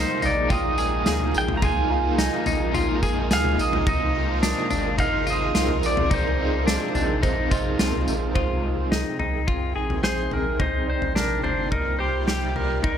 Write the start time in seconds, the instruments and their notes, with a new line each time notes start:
Already playing: ambient pad C3 A#3 D#4 F4 G#4, overdriven electric guitar G#3 D#4 F4 A#4, clean electric guitar D#4
0.00 pedal steel guitar C5
0.22 sub bass A#1, clean electric guitar D#4, pedal steel guitar D5, floor tom, tambourine
0.48 overdriven electric guitar G#3 D#4, clean electric guitar F4, celesta G5, kick, floor tom, tambourine
0.53 overdriven electric guitar F4 A#4, pedal steel guitar D#5
0.78 clean electric guitar G#4, tambourine
1.06 sub bass D2, clean electric guitar G#4, snare, tambourine
1.20 floor tom
1.34 sub bass A#1, pedal steel guitar G5, tambourine
1.48 floor tom
1.57 pedal steel guitar A#5
1.62 sub bass C2, overdriven electric guitar C3 F3 G#3 D#4 F4 A#4, clean electric guitar F4, ambient pad A#4, pedal steel guitar G#5, kick, floor tom, tambourine
1.89 overdriven electric guitar G#3 D#4 F4 A#4, celesta F5
2.18 clean electric guitar D#4, snare, tambourine
2.46 sub bass A#1, clean electric guitar D#4, floor tom, tambourine
2.71 overdriven electric guitar G#3 D#4, clean electric guitar F4, floor tom, tambourine
2.77 overdriven electric guitar F4 A#4
3.03 clean electric guitar G#4, kick, tambourine
3.30 sub bass D2, clean electric guitar G#4, pedal steel guitar F5, snare, tambourine
3.45 floor tom
3.58 sub bass A#1, pedal steel guitar D#5, tambourine
3.73 floor tom
3.85 sub bass C2, ambient pad C3 C4 G#4, overdriven electric guitar C3 D#3 G#3 D#4 F4, clean electric guitar D#4, kick, floor tom, tambourine
3.89 overdriven electric guitar C5, pedal steel guitar D#5
4.13 overdriven electric guitar G#3 D#4 F4 C5
4.43 clean electric guitar D4, snare, tambourine
4.70 sub bass G#1, clean electric guitar D4, floor tom, tambourine
4.97 overdriven electric guitar G#3 D#4, clean electric guitar D#4, celesta D#5, pedal steel guitar F5, kick, floor tom, tambourine
5.03 overdriven electric guitar F4 C5
5.27 clean electric guitar F4, pedal steel guitar D#5, tambourine
5.55 sub bass C2, clean electric guitar F4, snare, tambourine
5.69 floor tom
5.82 sub bass A#1, pedal steel guitar D5, tambourine
5.97 floor tom
6.10 sub bass C2, overdriven electric guitar C3 D#3 G#3 D#4 F4 C5, clean electric guitar D#4, pedal steel guitar C5, celesta D5, kick, floor tom, tambourine
6.38 overdriven electric guitar D#4 F4 C5
6.42 overdriven electric guitar G#3
6.67 clean electric guitar D4, snare, tambourine
6.95 sub bass A#1, clean electric guitar D4, floor tom, tambourine
7.21 overdriven electric guitar G#3 D#4, clean electric guitar D#4, celesta C5, kick, floor tom, tambourine
7.27 overdriven electric guitar F4 C5
7.51 clean electric guitar F4, celesta D#5, kick, tambourine
7.79 sub bass C2, clean electric guitar F4, snare, tambourine
7.93 floor tom
8.07 sub bass A#1, tambourine
8.34 sub bass C2, ambient pad C3 C4 D#4 G#4 G5, clean electric guitar F4, celesta C5, kick, floor tom
8.77 sub bass C2
8.92 clean electric guitar D#4, snare
9.19 sub bass C2, clean electric guitar D#4, floor tom
9.48 clean electric guitar F4, kick
9.76 sub bass A#1, clean electric guitar G#4
9.90 floor tom
10.03 clean electric guitar G#4, pedal steel guitar C5, snare
10.31 sub bass A#1, pedal steel guitar A#4, floor tom
10.59 sub bass C2, ambient pad C3 G3 A#3 D#4 F4 D5, clean electric guitar D#4, pedal steel guitar C5, kick, floor tom
10.87 pedal steel guitar C5, celesta D5
11.02 sub bass A#1, floor tom
11.15 clean electric guitar D4, pedal steel guitar A#4, snare
11.43 sub bass G1, clean electric guitar D4, pedal steel guitar C5, floor tom
11.71 sub bass C2, clean electric guitar D#4, pedal steel guitar A#4, kick, floor tom
11.99 clean electric guitar G4, pedal steel guitar C5
12.27 pedal steel guitar G4, clean electric guitar G4, celesta G5, snare
12.56 pedal steel guitar A#4, floor tom
12.84 sub bass C2, clean electric guitar D#4, pedal steel guitar A#4, kick, floor tom